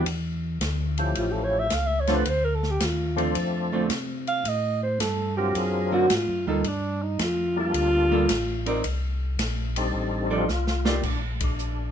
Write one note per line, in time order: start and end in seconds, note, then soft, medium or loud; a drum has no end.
0.05 0.59 E2 medium
0.05 ride medium
0.61 1.14 D2 medium
0.61 snare medium
0.61 hi-hat pedal medium
0.61 ride medium
0.98 1.67 F3 medium
0.98 1.67 A3 medium
0.98 1.68 C#4 medium
0.98 1.68 E4 medium
0.98 1.68 G4 medium
0.98 ride soft
1.15 1.69 A1 medium
1.15 1.33 F4 medium
1.15 ride medium
1.32 1.45 A4 medium
1.44 1.61 C#5 medium
1.59 1.76 E5 medium
1.70 2.24 C#2 medium
1.70 snare medium
1.70 hi-hat pedal medium
1.70 ride medium
1.74 1.88 F5 medium
1.86 2.02 E5 medium
2.00 2.17 C#5 medium
2.07 2.24 D3 medium
2.07 2.24 F3 medium
2.07 2.24 A3 medium
2.07 2.24 C4 medium
2.07 2.24 D4 medium
2.07 2.24 F4 medium
2.07 2.24 A4 medium
2.07 snare medium
2.07 ride soft
2.15 2.30 B4 medium
2.25 2.79 D2 medium
2.25 2.46 C5 loud
2.25 ride medium
2.44 2.57 A#4 medium
2.55 2.72 A4 medium
2.63 snare soft
2.71 2.86 G4 medium
2.80 3.34 D#2 medium
2.80 snare medium
2.80 hi-hat pedal medium
2.80 ride medium
2.85 3.37 F4 medium
3.16 3.33 D3 medium
3.16 3.86 F3 medium
3.16 3.86 A3 medium
3.16 3.33 A3 medium
3.16 3.86 C4 medium
3.16 3.33 C4 medium
3.16 3.86 D4 medium
3.16 3.34 F4 medium
3.16 3.87 A4 medium
3.16 ride soft
3.35 3.89 F2 medium
3.35 ride medium
3.72 3.88 D3 medium
3.72 3.88 A3 medium
3.72 3.89 C4 medium
3.72 3.89 F4 medium
3.90 4.44 C3 medium
3.90 snare medium
3.90 hi-hat pedal medium
3.90 ride medium
4.27 4.50 F5 medium
4.27 ride soft
4.45 4.99 A2 medium
4.45 4.82 D#5 medium
4.45 ride medium
4.83 5.02 C5 medium
4.99 5.53 G2 medium
4.99 5.37 A4 medium
4.99 snare medium
4.99 hi-hat pedal medium
4.99 ride medium
5.37 6.07 F#3 medium
5.37 6.07 C4 medium
5.37 6.07 D4 medium
5.37 6.07 F4 medium
5.37 5.59 G4 medium
5.37 6.07 A#4 medium
5.55 6.08 F#2 medium
5.55 5.93 G#4 loud
5.55 ride medium
5.92 6.08 D3 medium
5.92 6.08 A#3 medium
5.92 6.08 C4 medium
5.92 6.08 F#4 medium
5.92 6.16 F#4 medium
6.10 6.28 G#2 medium
6.10 snare medium
6.10 hi-hat pedal soft
6.10 ride medium
6.14 6.48 F4 medium
6.28 6.47 F#2 medium
6.46 6.63 D2 medium
6.46 6.63 G3 medium
6.46 6.63 A#3 medium
6.46 6.68 D#4 medium
6.46 6.63 F4 medium
6.46 6.64 A4 medium
6.64 7.18 G2 medium
6.64 7.04 D4 medium
6.64 ride medium
7.02 7.24 D#4 medium
7.19 7.73 F2 medium
7.19 7.58 F4 medium
7.19 snare medium
7.19 hi-hat pedal medium
7.19 ride medium
7.56 8.26 G3 medium
7.56 8.26 A#3 medium
7.56 8.26 D4 medium
7.56 8.26 F4 medium
7.56 8.82 F4 loud
7.56 8.26 A4 medium
7.74 8.28 D2 medium
7.74 ride medium
8.11 8.27 G3 medium
8.11 8.27 A#3 medium
8.11 8.28 F4 medium
8.11 8.28 A4 medium
8.29 8.83 A1 medium
8.29 snare medium
8.29 hi-hat pedal medium
8.29 ride medium
8.66 8.82 C4 medium
8.66 8.82 D#4 medium
8.66 8.83 A#4 medium
8.66 8.83 D5 medium
8.66 ride soft
8.84 9.37 C2 medium
8.84 ride medium
9.39 9.92 A#1 medium
9.39 snare medium
9.39 hi-hat pedal medium
9.39 ride medium
9.76 10.46 G3 medium
9.76 10.46 C4 medium
9.76 10.46 D4 medium
9.76 10.46 D#4 medium
9.76 10.46 A4 medium
9.76 ride medium
9.94 10.47 A1 medium
10.30 10.47 F3 medium
10.30 10.47 D#4 medium
10.30 10.88 F4 loud
10.30 10.47 A4 medium
10.30 10.47 D5 medium
10.48 11.02 C2 medium
10.48 snare medium
10.48 hi-hat pedal soft
10.67 snare medium
10.85 11.01 A#3 medium
10.85 10.96 D#4 medium
10.85 11.02 F4 medium
10.85 11.02 G4 medium
10.85 11.02 D5 medium
10.85 snare loud
11.03 11.91 A#1 medium
11.03 11.22 D4 medium
11.03 kick medium
11.03 crash medium
11.40 11.91 D4 medium
11.40 kick medium
11.40 ride medium
11.59 hi-hat pedal medium